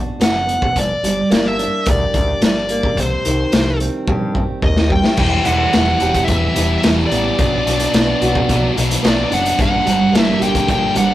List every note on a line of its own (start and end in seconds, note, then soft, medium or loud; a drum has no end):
0.00 0.18 F#3 medium
0.00 0.45 B3 medium
0.00 0.75 D4 medium
0.00 0.75 F#4 medium
0.20 0.55 F#1 medium
0.20 0.75 F#3 medium
0.20 0.78 F#5 loud
0.20 snare loud
0.20 closed hi-hat medium
0.47 0.75 B3 medium
0.47 closed hi-hat medium
0.62 kick loud
0.76 0.93 G1 medium
0.76 2.14 G2 medium
0.76 1.29 D5 medium
0.76 kick medium
0.76 closed hi-hat medium
1.03 1.21 G1 medium
1.03 2.42 G3 medium
1.03 closed hi-hat medium
1.30 1.66 G1 medium
1.30 2.69 A#3 medium
1.30 snare loud
1.30 closed hi-hat medium
1.35 1.47 D5 medium
1.47 1.87 E5 medium
1.58 2.13 D4 medium
1.58 closed hi-hat medium
1.86 2.04 D2 medium
1.86 4.08 G4 medium
1.86 kick loud
1.86 closed hi-hat medium
1.90 2.40 D5 medium
2.14 2.32 D2 medium
2.14 2.97 D4 medium
2.14 kick medium
2.14 closed hi-hat medium
2.41 2.97 G1 medium
2.41 3.25 G3 medium
2.41 snare loud
2.41 closed hi-hat medium
2.45 3.00 D5 medium
2.69 2.97 A#3 medium
2.69 closed hi-hat medium
2.83 kick medium
2.97 3.14 C2 loud
2.97 4.35 C3 medium
2.97 3.77 C5 medium
2.97 kick medium
2.97 closed hi-hat medium
3.25 3.43 C2 medium
3.25 4.62 D#3 medium
3.25 closed hi-hat medium
3.52 3.87 C2 medium
3.52 4.89 G3 medium
3.52 snare loud
3.52 closed hi-hat medium
3.80 4.34 C4 medium
3.80 closed hi-hat medium
4.08 4.42 G2 medium
4.08 5.18 G4 medium
4.08 kick loud
4.35 5.18 C4 soft
4.35 kick medium
4.62 4.97 D#2 medium
4.62 5.18 D#3 medium
4.62 4.92 D#5 medium
4.62 kick medium
4.77 snare medium
4.90 5.18 G3 medium
4.90 5.18 G5 loud
4.90 kick medium
5.04 snare medium
5.17 5.37 E1 medium
5.17 6.56 E2 medium
5.17 5.43 E3 medium
5.17 5.43 G3 medium
5.17 5.45 B3 medium
5.17 5.45 E4 loud
5.17 5.45 G5 loud
5.17 kick medium
5.17 crash loud
5.44 5.65 E1 medium
5.44 5.71 E3 medium
5.44 6.55 E3 medium
5.44 5.71 G3 medium
5.44 5.73 B3 medium
5.44 5.72 E4 medium
5.44 6.31 F#5 loud
5.44 closed hi-hat medium
5.72 5.93 E1 medium
5.72 5.97 E3 medium
5.72 5.98 G3 medium
5.72 6.83 G3 medium
5.72 5.99 B3 medium
5.72 5.99 E4 medium
5.72 snare loud
5.72 closed hi-hat medium
5.99 6.20 E1 medium
5.99 6.25 E3 medium
5.99 6.27 G3 medium
5.99 6.27 B3 medium
5.99 6.28 E4 medium
5.99 7.39 G4 medium
5.99 closed hi-hat medium
6.14 kick medium
6.14 closed hi-hat medium
6.24 6.54 E3 medium
6.24 6.54 G3 medium
6.24 6.55 B3 medium
6.24 6.77 E5 medium
6.24 closed hi-hat medium
6.28 6.47 E1 loud
6.28 7.10 B3 medium
6.28 6.55 E4 medium
6.28 kick medium
6.55 6.75 E1 medium
6.55 6.83 E3 medium
6.55 7.39 E3 medium
6.55 6.83 G3 medium
6.55 6.84 B3 medium
6.55 6.84 E4 medium
6.55 closed hi-hat medium
6.78 6.86 E5 medium
6.83 7.03 E1 medium
6.83 7.10 E3 medium
6.83 7.39 G3 medium
6.83 7.11 G3 medium
6.83 7.11 B3 medium
6.83 7.12 E4 medium
6.83 snare loud
6.83 closed hi-hat medium
6.99 snare soft
7.07 8.70 D5 medium
7.11 7.30 A1 medium
7.11 7.37 E3 medium
7.11 7.38 G3 medium
7.11 7.39 B3 medium
7.11 7.38 B3 medium
7.11 7.38 E4 medium
7.11 closed hi-hat medium
7.39 7.58 B1 medium
7.39 7.66 B2 medium
7.39 8.76 B2 medium
7.39 7.66 F#3 loud
7.39 7.67 B3 medium
7.39 7.67 D4 loud
7.39 kick loud
7.39 closed hi-hat medium
7.67 7.85 B1 medium
7.67 7.93 B2 medium
7.67 7.93 F#3 medium
7.67 8.76 F#3 medium
7.67 7.94 B3 medium
7.67 7.95 D4 medium
7.67 closed hi-hat medium
7.79 closed hi-hat medium
7.94 8.12 B1 medium
7.94 8.20 B2 medium
7.94 8.21 F#3 medium
7.94 8.21 B3 medium
7.94 9.02 B3 medium
7.94 8.22 D4 loud
7.94 snare loud
7.94 closed hi-hat medium
8.21 8.40 B1 medium
8.21 8.49 B2 medium
8.21 8.49 F#3 medium
8.21 8.50 B3 medium
8.21 8.50 D4 medium
8.21 9.59 F#4 medium
8.21 closed hi-hat medium
8.35 kick medium
8.49 8.68 B1 medium
8.49 8.75 B2 medium
8.49 8.76 F#3 medium
8.49 8.77 B3 loud
8.49 9.29 D4 medium
8.49 8.78 D4 medium
8.49 kick loud
8.49 closed hi-hat medium
8.76 8.95 B1 medium
8.76 9.03 B2 medium
8.76 9.04 F#3 medium
8.76 9.59 F#3 medium
8.76 9.05 B3 medium
8.76 9.05 D4 medium
8.76 closed hi-hat medium
8.91 closed hi-hat medium
9.03 9.23 B1 medium
9.03 9.31 B2 medium
9.03 9.30 F#3 medium
9.03 9.58 B3 medium
9.03 9.31 B3 medium
9.03 9.32 D4 medium
9.03 snare loud
9.03 closed hi-hat medium
9.08 9.34 D5 medium
9.30 9.50 F#1 medium
9.30 9.57 B2 medium
9.30 9.57 F#3 medium
9.30 9.57 B3 medium
9.30 9.58 D4 medium
9.30 9.58 D4 loud
9.30 9.58 F#5 loud
9.30 closed hi-hat medium
9.46 closed hi-hat medium
9.58 9.77 G1 medium
9.58 10.95 G2 medium
9.58 9.85 G2 medium
9.58 9.86 D3 medium
9.58 9.87 G3 loud
9.58 9.87 A#3 loud
9.58 9.87 D4 loud
9.58 10.21 F#5 loud
9.58 kick medium
9.58 closed hi-hat medium
9.85 10.05 G1 medium
9.85 10.13 G2 medium
9.85 10.13 D3 medium
9.85 10.95 G3 medium
9.85 10.15 G3 medium
9.85 10.14 A#3 medium
9.85 10.15 D4 medium
9.85 closed hi-hat medium
10.12 10.31 G1 medium
10.12 10.41 G2 medium
10.12 10.41 D3 medium
10.12 10.42 G3 loud
10.12 11.14 A#3 medium
10.12 10.42 A#3 loud
10.12 snare loud
10.12 closed hi-hat medium
10.16 10.42 D4 loud
10.21 10.43 E5 loud
10.40 10.59 G1 medium
10.40 10.68 G2 medium
10.40 10.69 D3 medium
10.40 10.70 G3 medium
10.40 10.70 A#3 medium
10.40 10.71 D4 medium
10.40 11.14 G4 medium
10.40 closed hi-hat medium
10.44 10.69 G5 medium
10.55 kick medium
10.55 closed hi-hat medium
10.68 10.87 G1 loud
10.68 10.96 G2 medium
10.68 10.96 D3 medium
10.68 10.97 G3 medium
10.68 10.97 A#3 loud
10.68 11.14 D4 medium
10.68 10.98 D4 loud
10.68 10.97 G5 loud
10.68 kick loud
10.68 closed hi-hat medium
10.95 11.14 G1 medium
10.95 11.14 G2 medium
10.95 11.14 D3 medium
10.95 11.14 G3 medium
10.95 11.14 G3 loud
10.95 11.14 A#3 medium
10.95 11.14 D4 medium
10.95 11.14 F#5 medium
10.95 closed hi-hat medium